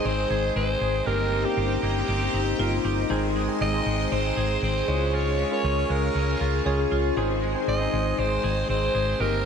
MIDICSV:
0, 0, Header, 1, 8, 480
1, 0, Start_track
1, 0, Key_signature, -4, "major"
1, 0, Tempo, 508475
1, 1006, Time_signature, 4, 2, 24, 8
1, 8924, End_track
2, 0, Start_track
2, 0, Title_t, "String machine"
2, 0, Program_c, 0, 50
2, 0, Note_on_c, 0, 68, 80
2, 0, Note_on_c, 0, 72, 76
2, 0, Note_on_c, 0, 75, 76
2, 0, Note_on_c, 0, 84, 86
2, 985, Note_off_c, 0, 72, 0
2, 986, Note_off_c, 0, 68, 0
2, 986, Note_off_c, 0, 84, 0
2, 1001, Note_on_c, 0, 67, 82
2, 1001, Note_on_c, 0, 82, 95
2, 1002, Note_on_c, 0, 72, 73
2, 2905, Note_off_c, 0, 67, 0
2, 2905, Note_off_c, 0, 82, 0
2, 2926, Note_on_c, 0, 68, 79
2, 2926, Note_on_c, 0, 84, 91
2, 4568, Note_off_c, 0, 72, 0
2, 4568, Note_off_c, 0, 75, 0
2, 4590, Note_off_c, 0, 84, 0
2, 4609, Note_on_c, 0, 73, 78
2, 4610, Note_on_c, 0, 77, 74
2, 4610, Note_on_c, 0, 85, 89
2, 6746, Note_off_c, 0, 73, 0
2, 6746, Note_off_c, 0, 85, 0
2, 6747, Note_off_c, 0, 77, 0
2, 6764, Note_on_c, 0, 72, 73
2, 6764, Note_on_c, 0, 75, 75
2, 6765, Note_on_c, 0, 84, 93
2, 8648, Note_off_c, 0, 68, 0
2, 8666, Note_off_c, 0, 72, 0
2, 8666, Note_off_c, 0, 84, 0
2, 8684, Note_on_c, 0, 67, 84
2, 8685, Note_on_c, 0, 72, 76
2, 8685, Note_on_c, 0, 82, 93
2, 8924, Note_off_c, 0, 67, 0
2, 8924, Note_off_c, 0, 72, 0
2, 8924, Note_off_c, 0, 75, 0
2, 8924, Note_off_c, 0, 82, 0
2, 8924, End_track
3, 0, Start_track
3, 0, Title_t, "Alto saxophone"
3, 0, Program_c, 1, 65
3, 54, Note_on_c, 1, 72, 103
3, 524, Note_off_c, 1, 72, 0
3, 530, Note_on_c, 1, 72, 103
3, 1003, Note_on_c, 1, 70, 100
3, 1018, Note_off_c, 1, 72, 0
3, 1365, Note_on_c, 1, 67, 90
3, 1379, Note_off_c, 1, 70, 0
3, 1720, Note_off_c, 1, 67, 0
3, 1726, Note_on_c, 1, 67, 92
3, 2648, Note_off_c, 1, 67, 0
3, 3412, Note_on_c, 1, 75, 118
3, 3893, Note_on_c, 1, 72, 109
3, 3907, Note_off_c, 1, 75, 0
3, 4370, Note_off_c, 1, 72, 0
3, 4375, Note_on_c, 1, 72, 99
3, 4861, Note_on_c, 1, 73, 96
3, 4875, Note_off_c, 1, 72, 0
3, 5214, Note_off_c, 1, 73, 0
3, 5218, Note_on_c, 1, 73, 100
3, 5579, Note_on_c, 1, 70, 90
3, 5593, Note_off_c, 1, 73, 0
3, 6533, Note_off_c, 1, 70, 0
3, 7253, Note_on_c, 1, 75, 106
3, 7736, Note_on_c, 1, 72, 98
3, 7750, Note_off_c, 1, 75, 0
3, 8208, Note_off_c, 1, 72, 0
3, 8213, Note_on_c, 1, 72, 104
3, 8691, Note_on_c, 1, 70, 96
3, 8705, Note_off_c, 1, 72, 0
3, 8924, Note_off_c, 1, 70, 0
3, 8924, End_track
4, 0, Start_track
4, 0, Title_t, "Marimba"
4, 0, Program_c, 2, 12
4, 2209, Note_on_c, 2, 63, 95
4, 2449, Note_on_c, 2, 65, 105
4, 2455, Note_off_c, 2, 63, 0
4, 2671, Note_off_c, 2, 65, 0
4, 2686, Note_on_c, 2, 63, 97
4, 2914, Note_off_c, 2, 63, 0
4, 2925, Note_on_c, 2, 63, 92
4, 3261, Note_off_c, 2, 63, 0
4, 6047, Note_on_c, 2, 68, 95
4, 6278, Note_off_c, 2, 68, 0
4, 6289, Note_on_c, 2, 68, 100
4, 6531, Note_on_c, 2, 65, 90
4, 6535, Note_off_c, 2, 68, 0
4, 6770, Note_on_c, 2, 63, 81
4, 6776, Note_off_c, 2, 65, 0
4, 7103, Note_off_c, 2, 63, 0
4, 8924, End_track
5, 0, Start_track
5, 0, Title_t, "Tine electric piano"
5, 0, Program_c, 3, 4
5, 0, Control_c, 3, 64, 127
5, 0, Note_on_c, 3, 56, 77
5, 0, Note_on_c, 3, 60, 70
5, 0, Note_on_c, 3, 63, 70
5, 0, Note_on_c, 3, 68, 71
5, 0, Note_on_c, 3, 72, 82
5, 0, Note_on_c, 3, 75, 80
5, 436, Note_off_c, 3, 56, 0
5, 438, Note_off_c, 3, 60, 0
5, 439, Note_off_c, 3, 63, 0
5, 440, Note_off_c, 3, 68, 0
5, 442, Note_off_c, 3, 72, 0
5, 1004, Note_on_c, 3, 58, 77
5, 1005, Note_on_c, 3, 60, 68
5, 1008, Note_on_c, 3, 63, 68
5, 1011, Note_on_c, 3, 67, 69
5, 1014, Note_on_c, 3, 70, 86
5, 1017, Control_c, 3, 64, 0
5, 1025, Note_off_c, 3, 75, 0
5, 1201, Control_c, 3, 64, 127
5, 1287, Note_off_c, 3, 58, 0
5, 1288, Note_off_c, 3, 60, 0
5, 1289, Note_off_c, 3, 63, 0
5, 1291, Note_off_c, 3, 67, 0
5, 1292, Note_off_c, 3, 70, 0
5, 1360, Note_on_c, 3, 58, 71
5, 1365, Note_on_c, 3, 60, 73
5, 1368, Note_on_c, 3, 61, 55
5, 1370, Note_on_c, 3, 67, 65
5, 1374, Note_on_c, 3, 70, 82
5, 1424, Note_on_c, 3, 63, 69
5, 1425, Note_off_c, 3, 61, 0
5, 2115, Note_off_c, 3, 58, 0
5, 2117, Note_off_c, 3, 60, 0
5, 2120, Note_off_c, 3, 67, 0
5, 2122, Note_off_c, 3, 70, 0
5, 2147, Note_off_c, 3, 63, 0
5, 2440, Note_on_c, 3, 58, 90
5, 2445, Note_on_c, 3, 60, 79
5, 2447, Note_on_c, 3, 63, 81
5, 2449, Note_on_c, 3, 67, 80
5, 2452, Note_on_c, 3, 70, 99
5, 2819, Note_off_c, 3, 58, 0
5, 2822, Note_off_c, 3, 60, 0
5, 2822, Note_off_c, 3, 63, 0
5, 2824, Note_off_c, 3, 67, 0
5, 2825, Note_off_c, 3, 70, 0
5, 2922, Note_on_c, 3, 56, 90
5, 2925, Note_on_c, 3, 60, 83
5, 2927, Note_on_c, 3, 63, 85
5, 2930, Note_on_c, 3, 68, 79
5, 2933, Note_on_c, 3, 72, 100
5, 2939, Control_c, 3, 64, 0
5, 3077, Control_c, 3, 64, 127
5, 3206, Note_off_c, 3, 56, 0
5, 3208, Note_off_c, 3, 60, 0
5, 3209, Note_off_c, 3, 63, 0
5, 3210, Note_off_c, 3, 68, 0
5, 3212, Note_off_c, 3, 72, 0
5, 3284, Note_on_c, 3, 56, 78
5, 3288, Note_on_c, 3, 60, 70
5, 3290, Note_on_c, 3, 63, 69
5, 3293, Note_on_c, 3, 68, 74
5, 3294, Note_on_c, 3, 75, 82
5, 3473, Note_off_c, 3, 56, 0
5, 3475, Note_off_c, 3, 60, 0
5, 3476, Note_off_c, 3, 63, 0
5, 3478, Note_off_c, 3, 68, 0
5, 3478, Note_off_c, 3, 75, 0
5, 3524, Note_on_c, 3, 56, 81
5, 3526, Note_on_c, 3, 60, 76
5, 3529, Note_on_c, 3, 63, 71
5, 3532, Note_on_c, 3, 68, 73
5, 3534, Note_on_c, 3, 75, 87
5, 4277, Note_off_c, 3, 56, 0
5, 4278, Note_off_c, 3, 60, 0
5, 4279, Note_off_c, 3, 63, 0
5, 4281, Note_off_c, 3, 68, 0
5, 4282, Note_off_c, 3, 75, 0
5, 4603, Note_on_c, 3, 56, 88
5, 4604, Note_on_c, 3, 61, 74
5, 4608, Note_on_c, 3, 64, 58
5, 4610, Note_on_c, 3, 68, 76
5, 4613, Note_on_c, 3, 73, 89
5, 4620, Control_c, 3, 64, 0
5, 4665, Note_off_c, 3, 64, 0
5, 4666, Note_on_c, 3, 65, 77
5, 4808, Control_c, 3, 64, 127
5, 5085, Note_off_c, 3, 56, 0
5, 5085, Note_off_c, 3, 61, 0
5, 5088, Note_off_c, 3, 68, 0
5, 5090, Note_off_c, 3, 73, 0
5, 5116, Note_off_c, 3, 65, 0
5, 5201, Note_on_c, 3, 56, 72
5, 5204, Note_on_c, 3, 61, 68
5, 5206, Note_on_c, 3, 65, 66
5, 5209, Note_on_c, 3, 68, 69
5, 5210, Note_on_c, 3, 70, 82
5, 5955, Note_off_c, 3, 56, 0
5, 5957, Note_off_c, 3, 61, 0
5, 5958, Note_off_c, 3, 65, 0
5, 5959, Note_off_c, 3, 68, 0
5, 5960, Note_off_c, 3, 70, 0
5, 6280, Note_on_c, 3, 56, 86
5, 6284, Note_on_c, 3, 61, 84
5, 6287, Note_on_c, 3, 65, 78
5, 6289, Note_on_c, 3, 68, 81
5, 6293, Note_on_c, 3, 73, 98
5, 6659, Note_off_c, 3, 56, 0
5, 6661, Note_off_c, 3, 61, 0
5, 6663, Note_off_c, 3, 65, 0
5, 6664, Note_off_c, 3, 68, 0
5, 6665, Note_off_c, 3, 73, 0
5, 6759, Note_on_c, 3, 56, 88
5, 6763, Note_on_c, 3, 60, 81
5, 6767, Note_on_c, 3, 63, 80
5, 6769, Note_on_c, 3, 68, 79
5, 6771, Note_on_c, 3, 72, 97
5, 6781, Control_c, 3, 64, 0
5, 6944, Control_c, 3, 64, 127
5, 7045, Note_off_c, 3, 56, 0
5, 7046, Note_off_c, 3, 60, 0
5, 7049, Note_off_c, 3, 63, 0
5, 7049, Note_off_c, 3, 68, 0
5, 7051, Note_off_c, 3, 72, 0
5, 7123, Note_on_c, 3, 56, 73
5, 7127, Note_on_c, 3, 60, 72
5, 7129, Note_on_c, 3, 63, 66
5, 7131, Note_on_c, 3, 68, 70
5, 7136, Note_on_c, 3, 72, 79
5, 7313, Note_off_c, 3, 56, 0
5, 7314, Note_off_c, 3, 60, 0
5, 7316, Note_off_c, 3, 63, 0
5, 7317, Note_off_c, 3, 68, 0
5, 7319, Note_off_c, 3, 72, 0
5, 7361, Note_on_c, 3, 56, 74
5, 7365, Note_on_c, 3, 60, 70
5, 7367, Note_on_c, 3, 63, 69
5, 7370, Note_on_c, 3, 68, 69
5, 7373, Note_on_c, 3, 72, 85
5, 8115, Note_off_c, 3, 56, 0
5, 8118, Note_off_c, 3, 60, 0
5, 8118, Note_off_c, 3, 63, 0
5, 8120, Note_off_c, 3, 68, 0
5, 8121, Note_off_c, 3, 72, 0
5, 8683, Note_on_c, 3, 58, 73
5, 8687, Note_on_c, 3, 60, 69
5, 8688, Note_on_c, 3, 63, 71
5, 8692, Note_on_c, 3, 67, 68
5, 8695, Note_on_c, 3, 70, 87
5, 8698, Control_c, 3, 64, 0
5, 8838, Control_c, 3, 64, 127
5, 8924, Note_off_c, 3, 58, 0
5, 8924, Note_off_c, 3, 60, 0
5, 8924, Note_off_c, 3, 63, 0
5, 8924, Note_off_c, 3, 67, 0
5, 8924, Note_off_c, 3, 70, 0
5, 8924, End_track
6, 0, Start_track
6, 0, Title_t, "Clean electric guitar"
6, 0, Program_c, 4, 27
6, 0, Note_on_c, 4, 51, 84
6, 0, Note_on_c, 4, 56, 64
6, 0, Note_on_c, 4, 68, 71
6, 46, Note_on_c, 4, 60, 69
6, 277, Note_off_c, 4, 68, 0
6, 289, Note_on_c, 4, 68, 74
6, 525, Note_off_c, 4, 60, 0
6, 528, Note_on_c, 4, 60, 62
6, 757, Note_off_c, 4, 68, 0
6, 769, Note_on_c, 4, 68, 69
6, 1003, Note_off_c, 4, 51, 0
6, 1006, Note_on_c, 4, 51, 84
6, 1008, Note_off_c, 4, 68, 0
6, 1011, Note_on_c, 4, 67, 75
6, 1055, Note_off_c, 4, 56, 0
6, 1244, Note_on_c, 4, 58, 64
6, 1273, Note_off_c, 4, 60, 0
6, 1485, Note_on_c, 4, 60, 65
6, 1717, Note_off_c, 4, 58, 0
6, 1728, Note_on_c, 4, 58, 65
6, 1963, Note_off_c, 4, 60, 0
6, 1967, Note_on_c, 4, 60, 65
6, 2196, Note_off_c, 4, 67, 0
6, 2208, Note_on_c, 4, 67, 74
6, 2446, Note_off_c, 4, 60, 0
6, 2450, Note_on_c, 4, 60, 61
6, 2678, Note_off_c, 4, 67, 0
6, 2689, Note_on_c, 4, 67, 73
6, 2916, Note_off_c, 4, 51, 0
6, 2928, Note_off_c, 4, 67, 0
6, 2928, Note_on_c, 4, 51, 88
6, 2932, Note_on_c, 4, 68, 74
6, 2975, Note_off_c, 4, 58, 0
6, 2976, Note_off_c, 4, 60, 0
6, 3170, Note_on_c, 4, 56, 63
6, 3408, Note_on_c, 4, 60, 63
6, 3644, Note_off_c, 4, 56, 0
6, 3648, Note_on_c, 4, 56, 65
6, 3876, Note_off_c, 4, 60, 0
6, 3888, Note_on_c, 4, 60, 69
6, 4122, Note_off_c, 4, 68, 0
6, 4126, Note_on_c, 4, 68, 71
6, 4356, Note_off_c, 4, 60, 0
6, 4368, Note_on_c, 4, 60, 62
6, 4603, Note_off_c, 4, 56, 0
6, 4606, Note_on_c, 4, 56, 85
6, 4655, Note_off_c, 4, 51, 0
6, 4655, Note_off_c, 4, 60, 0
6, 4844, Note_off_c, 4, 56, 0
6, 4848, Note_on_c, 4, 56, 83
6, 4851, Note_off_c, 4, 68, 0
6, 4855, Note_on_c, 4, 65, 74
6, 5083, Note_off_c, 4, 56, 0
6, 5087, Note_on_c, 4, 56, 64
6, 5327, Note_on_c, 4, 61, 65
6, 5561, Note_off_c, 4, 56, 0
6, 5565, Note_on_c, 4, 56, 60
6, 5795, Note_off_c, 4, 61, 0
6, 5806, Note_on_c, 4, 61, 68
6, 6035, Note_off_c, 4, 65, 0
6, 6046, Note_on_c, 4, 65, 75
6, 6276, Note_off_c, 4, 61, 0
6, 6288, Note_on_c, 4, 61, 63
6, 6515, Note_off_c, 4, 65, 0
6, 6526, Note_on_c, 4, 65, 69
6, 6766, Note_off_c, 4, 65, 0
6, 6768, Note_on_c, 4, 51, 86
6, 6773, Note_on_c, 4, 68, 73
6, 6814, Note_off_c, 4, 56, 0
6, 6815, Note_off_c, 4, 61, 0
6, 7006, Note_on_c, 4, 56, 60
6, 7247, Note_on_c, 4, 60, 63
6, 7474, Note_off_c, 4, 56, 0
6, 7486, Note_on_c, 4, 56, 59
6, 7720, Note_off_c, 4, 60, 0
6, 7723, Note_on_c, 4, 60, 70
6, 7955, Note_off_c, 4, 68, 0
6, 7966, Note_on_c, 4, 68, 75
6, 8203, Note_off_c, 4, 60, 0
6, 8207, Note_on_c, 4, 60, 61
6, 8434, Note_off_c, 4, 68, 0
6, 8445, Note_on_c, 4, 68, 69
6, 8680, Note_off_c, 4, 51, 0
6, 8684, Note_on_c, 4, 51, 84
6, 8686, Note_off_c, 4, 68, 0
6, 8690, Note_on_c, 4, 67, 75
6, 8734, Note_off_c, 4, 56, 0
6, 8924, Note_off_c, 4, 51, 0
6, 8924, Note_off_c, 4, 60, 0
6, 8924, Note_off_c, 4, 67, 0
6, 8924, End_track
7, 0, Start_track
7, 0, Title_t, "Overdriven electric guitar"
7, 0, Program_c, 5, 29
7, 30, Note_on_c, 5, 44, 65
7, 64, Note_on_c, 5, 51, 71
7, 91, Note_on_c, 5, 56, 69
7, 996, Note_off_c, 5, 51, 0
7, 998, Note_off_c, 5, 44, 0
7, 1000, Note_on_c, 5, 48, 78
7, 1004, Note_off_c, 5, 56, 0
7, 1008, Note_on_c, 5, 55, 78
7, 1020, Note_on_c, 5, 60, 90
7, 1227, Note_off_c, 5, 60, 0
7, 1239, Note_on_c, 5, 60, 59
7, 1243, Note_off_c, 5, 48, 0
7, 1247, Note_off_c, 5, 55, 0
7, 1265, Note_on_c, 5, 55, 47
7, 1948, Note_on_c, 5, 48, 68
7, 1969, Note_off_c, 5, 55, 0
7, 1980, Note_on_c, 5, 55, 68
7, 2004, Note_off_c, 5, 60, 0
7, 2008, Note_on_c, 5, 60, 72
7, 2917, Note_off_c, 5, 48, 0
7, 2917, Note_on_c, 5, 44, 87
7, 2929, Note_on_c, 5, 51, 95
7, 2933, Note_off_c, 5, 55, 0
7, 2937, Note_on_c, 5, 56, 101
7, 2947, Note_off_c, 5, 60, 0
7, 3147, Note_off_c, 5, 56, 0
7, 3158, Note_on_c, 5, 56, 63
7, 3162, Note_off_c, 5, 44, 0
7, 3168, Note_off_c, 5, 51, 0
7, 3188, Note_on_c, 5, 51, 52
7, 3881, Note_on_c, 5, 44, 68
7, 3885, Note_off_c, 5, 51, 0
7, 3896, Note_on_c, 5, 51, 64
7, 3904, Note_off_c, 5, 56, 0
7, 3908, Note_on_c, 5, 56, 77
7, 4601, Note_on_c, 5, 61, 63
7, 4604, Note_off_c, 5, 44, 0
7, 4608, Note_off_c, 5, 56, 0
7, 4611, Note_off_c, 5, 51, 0
7, 4612, Note_on_c, 5, 56, 63
7, 4621, Note_on_c, 5, 49, 61
7, 5067, Note_off_c, 5, 61, 0
7, 5078, Note_on_c, 5, 61, 59
7, 5094, Note_off_c, 5, 49, 0
7, 5103, Note_off_c, 5, 56, 0
7, 5107, Note_on_c, 5, 56, 46
7, 5790, Note_on_c, 5, 49, 65
7, 5802, Note_off_c, 5, 61, 0
7, 5818, Note_off_c, 5, 56, 0
7, 5822, Note_on_c, 5, 56, 70
7, 5850, Note_on_c, 5, 61, 74
7, 6758, Note_off_c, 5, 49, 0
7, 6761, Note_on_c, 5, 44, 85
7, 6773, Note_on_c, 5, 51, 89
7, 6780, Note_off_c, 5, 56, 0
7, 6783, Note_on_c, 5, 56, 91
7, 6788, Note_off_c, 5, 61, 0
7, 6990, Note_off_c, 5, 56, 0
7, 7001, Note_on_c, 5, 56, 66
7, 7004, Note_off_c, 5, 44, 0
7, 7010, Note_off_c, 5, 51, 0
7, 7028, Note_on_c, 5, 51, 54
7, 7711, Note_on_c, 5, 44, 67
7, 7724, Note_off_c, 5, 56, 0
7, 7742, Note_off_c, 5, 51, 0
7, 7746, Note_on_c, 5, 51, 65
7, 7773, Note_on_c, 5, 56, 71
7, 8679, Note_off_c, 5, 44, 0
7, 8680, Note_off_c, 5, 51, 0
7, 8684, Note_on_c, 5, 48, 77
7, 8691, Note_off_c, 5, 56, 0
7, 8695, Note_on_c, 5, 55, 82
7, 8703, Note_on_c, 5, 60, 85
7, 8909, Note_off_c, 5, 60, 0
7, 8924, Note_off_c, 5, 48, 0
7, 8924, Note_off_c, 5, 55, 0
7, 8924, End_track
8, 0, Start_track
8, 0, Title_t, "Fingered electric bass"
8, 0, Program_c, 6, 33
8, 47, Note_on_c, 6, 32, 105
8, 219, Note_off_c, 6, 32, 0
8, 285, Note_on_c, 6, 32, 95
8, 459, Note_off_c, 6, 32, 0
8, 527, Note_on_c, 6, 32, 113
8, 700, Note_off_c, 6, 32, 0
8, 766, Note_on_c, 6, 32, 87
8, 939, Note_off_c, 6, 32, 0
8, 1007, Note_on_c, 6, 31, 101
8, 1353, Note_off_c, 6, 31, 0
8, 1485, Note_on_c, 6, 31, 111
8, 1658, Note_off_c, 6, 31, 0
8, 1727, Note_on_c, 6, 31, 100
8, 1899, Note_off_c, 6, 31, 0
8, 1968, Note_on_c, 6, 31, 103
8, 2140, Note_off_c, 6, 31, 0
8, 2207, Note_on_c, 6, 31, 91
8, 2380, Note_off_c, 6, 31, 0
8, 2446, Note_on_c, 6, 31, 97
8, 2619, Note_off_c, 6, 31, 0
8, 2687, Note_on_c, 6, 31, 90
8, 2860, Note_off_c, 6, 31, 0
8, 2928, Note_on_c, 6, 32, 107
8, 3273, Note_off_c, 6, 32, 0
8, 3408, Note_on_c, 6, 32, 115
8, 3580, Note_off_c, 6, 32, 0
8, 3646, Note_on_c, 6, 32, 104
8, 3819, Note_off_c, 6, 32, 0
8, 3888, Note_on_c, 6, 32, 102
8, 4060, Note_off_c, 6, 32, 0
8, 4126, Note_on_c, 6, 32, 91
8, 4299, Note_off_c, 6, 32, 0
8, 4366, Note_on_c, 6, 32, 106
8, 4539, Note_off_c, 6, 32, 0
8, 4607, Note_on_c, 6, 37, 94
8, 5125, Note_off_c, 6, 37, 0
8, 5327, Note_on_c, 6, 37, 119
8, 5499, Note_off_c, 6, 37, 0
8, 5569, Note_on_c, 6, 37, 101
8, 5741, Note_off_c, 6, 37, 0
8, 5808, Note_on_c, 6, 37, 97
8, 5980, Note_off_c, 6, 37, 0
8, 6049, Note_on_c, 6, 37, 99
8, 6221, Note_off_c, 6, 37, 0
8, 6286, Note_on_c, 6, 37, 103
8, 6459, Note_off_c, 6, 37, 0
8, 6529, Note_on_c, 6, 37, 92
8, 6701, Note_off_c, 6, 37, 0
8, 6767, Note_on_c, 6, 32, 103
8, 7113, Note_off_c, 6, 32, 0
8, 7247, Note_on_c, 6, 32, 104
8, 7420, Note_off_c, 6, 32, 0
8, 7488, Note_on_c, 6, 32, 100
8, 7660, Note_off_c, 6, 32, 0
8, 7727, Note_on_c, 6, 32, 104
8, 7900, Note_off_c, 6, 32, 0
8, 7966, Note_on_c, 6, 32, 105
8, 8139, Note_off_c, 6, 32, 0
8, 8206, Note_on_c, 6, 32, 113
8, 8379, Note_off_c, 6, 32, 0
8, 8446, Note_on_c, 6, 32, 85
8, 8619, Note_off_c, 6, 32, 0
8, 8685, Note_on_c, 6, 31, 102
8, 8924, Note_off_c, 6, 31, 0
8, 8924, End_track
0, 0, End_of_file